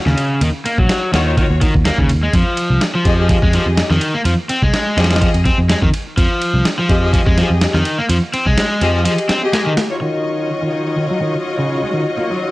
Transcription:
0.06 0.13 D#2 loud
0.06 0.40 C#3 loud
0.06 snare soft
0.18 ride medium
0.41 0.50 D#2 loud
0.41 0.48 D#3 medium
0.41 ride medium
0.65 0.77 A#3 medium
0.65 ride medium
0.78 0.85 A#1 loud
0.78 1.12 F#3 loud
0.78 kick medium
0.89 snare loud
0.89 ride medium
1.13 1.43 D#2 medium
1.13 1.36 D#3 medium
1.13 1.24 F4 loud
1.13 1.24 F#4 medium
1.13 1.24 C#5 loud
1.13 snare loud
1.13 ride medium
1.26 1.36 F4 medium
1.26 1.36 F#4 medium
1.26 1.36 C#5 medium
1.37 1.44 D#3 medium
1.37 1.52 F4 medium
1.37 1.52 F#4 medium
1.37 1.52 C#5 medium
1.37 kick medium
1.37 ride medium
1.50 1.65 D#2 medium
1.61 1.73 D#3 medium
1.61 kick loud
1.61 ride medium
1.74 1.89 D#2 medium
1.74 kick medium
1.85 1.97 A#3 medium
1.85 snare loud
1.85 ride medium
1.98 2.27 D#2 loud
1.98 2.08 C#3 medium
1.98 kick medium
2.09 ride medium
2.23 2.32 G#3 medium
2.33 2.42 F2 medium
2.33 2.81 F3 medium
2.33 kick loud
2.33 ride medium
2.57 ride medium
2.70 2.77 C2 loud
2.81 snare loud
2.81 ride medium
2.95 3.29 F3 loud
3.05 3.35 F2 medium
3.05 3.17 G4 medium
3.05 3.17 G#4 medium
3.05 3.17 D#5 loud
3.05 kick medium
3.05 ride medium
3.18 3.31 G4 medium
3.18 3.31 G#4 medium
3.18 3.31 D#5 loud
3.29 3.37 F3 medium
3.29 kick loud
3.29 ride medium
3.42 3.57 F2 medium
3.42 3.53 G#3 loud
3.42 kick medium
3.53 3.65 F3 medium
3.53 3.76 G4 medium
3.53 3.76 G#4 medium
3.53 3.76 D#5 medium
3.53 snare soft
3.53 ride medium
3.66 3.81 F2 medium
3.77 snare loud
3.77 ride medium
3.90 3.98 F2 loud
3.90 4.13 D#3 loud
3.90 snare soft
4.01 ride medium
4.14 4.20 A#3 loud
4.25 4.34 F2 medium
4.25 4.33 F3 medium
4.25 ride medium
4.49 4.61 C4 medium
4.49 ride medium
4.62 4.70 C2 loud
4.62 4.97 G#3 loud
4.62 kick loud
4.74 snare loud
4.74 ride medium
4.97 5.27 F2 medium
4.97 5.20 F3 medium
4.97 5.08 G4 loud
4.97 5.09 G#4 medium
4.97 5.09 D#5 loud
4.97 snare medium
4.97 ride medium
5.04 snare medium
5.04 ride medium
5.10 5.20 G4 medium
5.10 5.20 G#4 medium
5.10 5.20 D#5 medium
5.10 snare medium
5.10 ride medium
5.16 snare medium
5.16 ride medium
5.21 5.29 F3 medium
5.21 5.36 G4 medium
5.21 5.36 G#4 medium
5.21 5.36 D#5 medium
5.21 kick loud
5.21 ride medium
5.34 5.49 F2 medium
5.34 ride soft
5.45 5.57 C4 medium
5.45 kick medium
5.45 ride medium
5.58 5.73 F2 medium
5.69 5.76 G#3 medium
5.69 snare loud
5.69 ride medium
5.82 5.89 F2 loud
5.82 5.89 D#3 medium
5.82 kick medium
5.94 ride medium
6.18 6.26 F2 loud
6.18 6.64 F3 medium
6.18 kick loud
6.18 ride medium
6.42 ride medium
6.54 6.61 C2 loud
6.65 snare loud
6.65 ride medium
6.79 7.12 F3 loud
6.89 7.19 F2 loud
6.89 7.01 G4 medium
6.89 7.01 G#4 medium
6.89 7.01 D#5 loud
6.89 kick loud
6.89 ride medium
7.03 7.16 G4 medium
7.03 7.16 G#4 medium
7.03 7.16 D#5 loud
7.13 7.20 F3 medium
7.13 kick loud
7.13 ride medium
7.26 7.41 F2 medium
7.26 7.36 G#3 loud
7.26 kick loud
7.38 7.49 F3 medium
7.38 7.60 G4 medium
7.38 7.60 G#4 medium
7.38 7.60 D#5 medium
7.38 snare soft
7.38 ride medium
7.50 7.65 F2 medium
7.61 snare loud
7.61 ride medium
7.74 7.82 F2 loud
7.74 7.97 D#3 loud
7.74 snare soft
7.85 ride medium
7.99 8.04 A#3 loud
8.09 8.18 F2 loud
8.09 8.17 F3 medium
8.09 ride medium
8.34 8.45 C4 medium
8.34 ride medium
8.46 8.53 C2 loud
8.46 8.80 G#3 loud
8.46 kick loud
8.58 snare loud
8.58 ride medium
8.81 9.06 F2 medium
8.81 9.04 F3 medium
8.81 8.93 G4 loud
8.81 8.93 G#4 medium
8.81 8.93 D#5 loud
8.81 ride medium
8.95 9.04 G4 medium
8.95 9.04 G#4 medium
8.95 9.04 D#5 medium
9.05 9.12 F3 medium
9.05 9.20 G4 medium
9.05 9.20 G#4 medium
9.05 9.20 D#5 medium
9.05 ride medium
9.18 ride soft
9.29 9.41 C4 medium
9.29 snare loud
9.29 ride medium
9.43 9.65 G4 loud
9.43 9.64 G#4 medium
9.43 9.65 D#5 loud
9.53 9.60 G#3 medium
9.53 snare loud
9.53 ride medium
9.66 9.72 D#3 medium
9.77 snare loud
9.77 ride medium
9.90 10.00 F4 medium
9.90 10.00 F#4 medium
9.90 10.00 C#5 medium
10.01 12.51 D#3 medium
10.01 10.48 D#3 medium
10.01 12.51 F#3 medium
10.01 12.51 C#4 medium
10.01 12.51 F4 medium
10.01 12.51 F#4 medium
10.01 12.51 C#5 medium
10.01 12.51 D#5 medium
10.01 12.51 F5 medium
10.62 10.96 D#3 medium
10.97 11.04 D#3 medium
11.11 11.20 F#3 loud
11.22 11.33 D#3 medium
11.59 11.81 C#3 loud
11.82 11.88 G#3 loud
11.93 12.00 D#3 medium
12.18 12.29 A#3 medium
12.30 12.51 F#3 loud

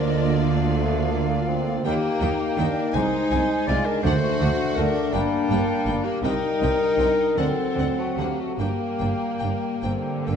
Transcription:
0.00 1.85 D2 medium
0.00 1.85 D3 medium
0.00 0.52 F3 medium
0.00 1.83 A#3 medium
0.00 2.91 A#3 medium
0.00 0.78 D4 medium
0.00 1.81 F4 medium
0.00 1.86 F4 medium
0.00 0.74 A#4 medium
0.00 1.81 D5 medium
0.08 0.44 D#5 medium
0.43 1.83 F5 medium
0.78 1.14 A3 medium
1.13 1.50 A#3 medium
1.49 1.88 C4 medium
1.84 1.93 D#2 medium
1.84 1.93 D#3 medium
1.84 1.92 A#3 medium
1.84 2.54 A#3 medium
1.84 2.97 A#3 medium
1.84 1.92 D#4 medium
1.84 4.01 D#4 medium
1.84 2.60 G4 medium
1.84 2.95 G5 medium
1.84 1.93 G5 medium
2.21 2.29 D#2 medium
2.21 2.29 D#3 medium
2.21 2.29 A#3 medium
2.21 2.29 D#4 medium
2.21 2.29 G5 medium
2.57 2.67 D#2 medium
2.57 2.65 D#3 medium
2.57 2.65 A#3 medium
2.57 2.95 D4 medium
2.57 2.66 D#4 medium
2.57 2.96 A#4 medium
2.57 2.66 G5 medium
2.93 3.03 C2 medium
2.93 3.03 C3 medium
2.93 3.03 G#3 medium
2.93 4.05 G#3 medium
2.93 4.04 G#3 medium
2.93 3.02 D#4 medium
2.93 3.67 D#4 medium
2.93 3.69 C5 loud
2.93 3.01 G#5 medium
2.93 4.03 G#5 medium
3.31 3.40 C2 medium
3.31 3.39 C3 medium
3.31 3.40 G#3 medium
3.31 3.39 D#4 soft
3.31 3.39 G#5 medium
3.67 3.76 C2 medium
3.67 3.75 C3 medium
3.67 3.76 G#3 medium
3.67 3.77 D#4 medium
3.67 3.87 F4 medium
3.67 3.87 D5 loud
3.67 3.76 G#5 medium
3.85 4.04 D4 medium
3.85 4.02 A#4 medium
4.03 4.13 D2 medium
4.03 4.12 D3 medium
4.03 5.10 D3 medium
4.03 5.11 A3 medium
4.03 4.12 A3 medium
4.03 5.15 A3 medium
4.03 6.06 D4 medium
4.03 4.13 D4 medium
4.03 4.78 F#4 medium
4.03 4.77 C5 loud
4.03 5.11 F#5 medium
4.03 4.14 F#5 medium
4.40 4.49 D2 medium
4.40 4.48 D3 medium
4.40 4.49 A3 medium
4.40 4.50 D4 medium
4.40 4.49 F#5 medium
4.75 4.86 D2 medium
4.75 4.85 D3 medium
4.75 4.86 A3 medium
4.75 4.85 D4 medium
4.75 5.15 D4 medium
4.75 5.15 A#4 medium
4.75 4.84 F#5 medium
5.13 5.22 G1 medium
5.13 5.22 G2 medium
5.13 6.06 G3 medium
5.13 6.06 A#3 medium
5.13 5.22 A#3 medium
5.13 6.24 A#3 medium
5.13 6.07 D4 medium
5.13 5.22 D4 medium
5.13 5.95 G5 medium
5.13 5.21 G5 medium
5.50 5.59 G1 medium
5.50 5.58 G2 medium
5.50 5.59 A#3 medium
5.50 5.59 D4 medium
5.50 5.60 G5 medium
5.86 5.95 G1 medium
5.86 5.94 G2 medium
5.86 5.95 A#3 medium
5.86 5.96 D4 medium
5.86 5.95 G5 soft
6.05 6.24 A#3 medium
6.05 6.23 G4 medium
6.23 6.32 C2 medium
6.23 6.31 C3 medium
6.23 7.33 G3 medium
6.23 6.31 C4 medium
6.23 6.76 D#4 medium
6.23 6.31 D#4 medium
6.23 7.40 D#4 medium
6.23 7.36 D#4 medium
6.23 7.40 A#4 loud
6.23 6.32 G5 medium
6.23 7.39 G5 medium
6.61 6.70 C2 medium
6.61 6.69 C3 medium
6.61 6.69 C4 soft
6.61 6.69 D#4 medium
6.61 6.71 G5 medium
6.81 7.37 D4 medium
6.98 7.07 C2 medium
6.98 7.06 C3 medium
6.98 7.06 C4 soft
6.98 7.06 D#4 medium
6.98 7.08 G5 medium
7.36 7.46 D2 medium
7.36 7.44 D3 medium
7.36 8.59 F#3 medium
7.36 8.42 C4 medium
7.36 7.47 C4 soft
7.36 7.98 C4 medium
7.36 8.59 C4 medium
7.36 7.47 D4 medium
7.36 7.98 A4 medium
7.36 8.58 F#5 medium
7.36 7.47 F#5 medium
7.76 7.87 D2 soft
7.76 7.84 D3 soft
7.76 7.86 C4 soft
7.76 7.86 D4 soft
7.76 7.87 F#5 soft
7.99 8.19 A3 medium
7.99 8.19 F#4 medium
8.17 8.26 D2 soft
8.17 8.27 D3 soft
8.17 8.39 A#3 medium
8.17 8.26 C4 soft
8.17 8.27 D4 soft
8.17 8.42 G4 medium
8.17 8.27 F#5 soft
8.39 8.59 A3 medium
8.39 8.61 F#4 medium
8.58 8.67 G1 soft
8.58 8.68 G2 medium
8.58 10.36 G3 medium
8.58 10.36 A#3 medium
8.58 9.72 A#3 medium
8.58 8.67 A#3 soft
8.58 8.67 D4 soft
8.58 10.36 G4 medium
8.58 8.68 G5 soft
8.58 10.36 G5 medium
8.99 9.09 G1 soft
8.99 9.07 G2 soft
8.99 9.09 A#3 soft
8.99 9.08 D4 soft
8.99 9.08 G5 soft
9.40 9.50 G1 soft
9.40 9.51 G2 soft
9.40 9.50 A#3 soft
9.40 9.49 D4 soft
9.40 9.48 G5 soft
9.82 9.92 G1 soft
9.82 9.92 G2 soft
9.82 10.36 D3 medium
9.82 9.90 A#3 soft
9.82 10.27 C4 medium
9.82 9.91 D4 soft
9.82 9.91 G5 soft
10.26 10.36 G1 soft
10.26 10.35 G2 soft
10.26 10.36 A#3 soft
10.26 10.35 A#3 soft
10.26 10.35 D4 soft
10.26 10.35 G5 soft

